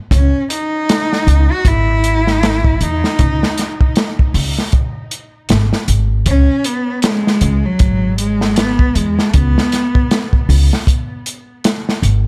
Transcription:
0.11 upright bass C#2, cello C#4, kick, closed hi-hat
0.50 cello D#4, closed hi-hat
0.89 snare, closed hi-hat
1.13 snare
1.27 upright bass C#2, closed hi-hat
1.51 cello F#4
1.65 upright bass G#1, cello E4, kick, closed hi-hat
2.04 closed hi-hat
2.27 snare
2.43 snare, closed hi-hat
2.64 kick
2.81 upright bass E2, cello D#4, closed hi-hat
3.04 snare
3.19 upright bass C#2, kick, closed hi-hat
3.43 snare
3.58 snare, closed hi-hat
3.81 kick
3.96 snare, closed hi-hat
4.19 kick
4.34 upright bass C#2, open hi-hat
4.58 snare
4.72 kick, closed hi-hat
5.11 closed hi-hat
5.49 upright bass G#1, snare, closed hi-hat
5.73 snare
5.88 upright bass G#1, closed hi-hat
6.26 upright bass C#2, cello C#4, kick, closed hi-hat
6.64 cello B3, closed hi-hat
7.02 cello G#3, snare, closed hi-hat
7.27 snare
7.41 upright bass C#2, closed hi-hat
7.65 cello F#3
7.79 upright bass G#1, kick, closed hi-hat
8.18 cello G#3, closed hi-hat
8.41 snare
8.56 cello B3, snare, closed hi-hat
8.79 kick
8.95 upright bass E2, cello G#3, closed hi-hat
9.19 snare
9.34 upright bass C#2, cello B3, kick, closed hi-hat
9.58 snare
9.72 snare, closed hi-hat
9.95 kick
10.11 snare, closed hi-hat
10.33 kick
10.49 upright bass C#2, open hi-hat
10.73 snare
10.87 kick, closed hi-hat
11.26 closed hi-hat
11.64 snare, closed hi-hat
11.89 snare
12.02 upright bass G#1, closed hi-hat

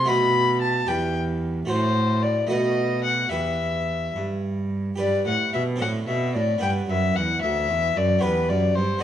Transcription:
Already playing: cello C3
0.04 harpsichord A3 F#4 D#5, violin B5
0.09 cello B2, harpsichord B2
0.61 violin A5
0.87 cello E2, harpsichord E2 G4 B4, violin G5
1.65 cello A2, harpsichord A3 F#4 C5, violin C5
1.70 harpsichord A2
2.23 violin D5
2.47 cello B2, harpsichord A3 F#4 B4, violin D#5
2.51 harpsichord B2
3.04 violin F#5
3.30 cello E2, harpsichord E2 G4 B4, violin E5
4.16 cello G2, harpsichord G2
4.96 harpsichord G2 G4 B4, cello G2, violin D5
5.25 harpsichord A2, cello A2, violin F#5
5.53 cello B2, harpsichord B2, violin E5
5.76 harpsichord C4 D4 A4
5.80 harpsichord A2, cello A2, violin F#5
6.08 cello B2, harpsichord B2, violin E5
6.35 harpsichord A2, cello A2, violin D5
6.58 cello G2, harpsichord G2 B3 D4 B4, violin G5
6.88 cello F#2, harpsichord F#2, violin E5
7.16 cello E2, harpsichord E2, violin F#5
7.42 cello D2, harpsichord D2, violin E5
7.69 harpsichord E2, cello E2
7.96 cello F#2, harpsichord F#2, violin D5
8.19 harpsichord B3 G4 B4, violin B4
8.23 cello E2, harpsichord E2
8.49 cello F#2, harpsichord F#2, violin D5
8.75 cello G2, harpsichord G2, violin C5
8.99 harpsichord B3 A4

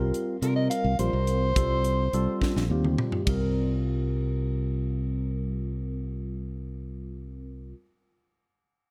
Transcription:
Already playing: fingered electric bass C2, tine electric piano G3 C4 F4 A#4
0.14 closed hi-hat
0.42 fingered electric bass C3, tine electric piano G3 C4 F4 A#4, soprano saxophone A#4, closed hi-hat
0.56 soprano saxophone D#5
0.70 soprano saxophone F5, closed hi-hat
0.84 fingered electric bass C2
0.99 fingered electric bass A#1, tine electric piano G3 C4 F4 A#4, soprano saxophone C5, closed hi-hat
1.13 fingered electric bass C2
1.27 closed hi-hat
1.56 fingered electric bass C2, tine electric piano G3 C4 F4 A4, kick, closed hi-hat
1.84 closed hi-hat
2.13 fingered electric bass C2, tine electric piano G3 C4 F4 A4, closed hi-hat
2.41 muted fingered electric bass stroke, kick, snare
2.56 fingered electric bass A#1, snare
2.70 fingered electric bass D#2, tine electric piano G3 C4 F4 G4
2.84 mid tom
2.98 mid tom
3.12 floor tom
3.25 fingered electric bass C2, tine electric piano G3 C4 F4 A#4, kick, ride bell

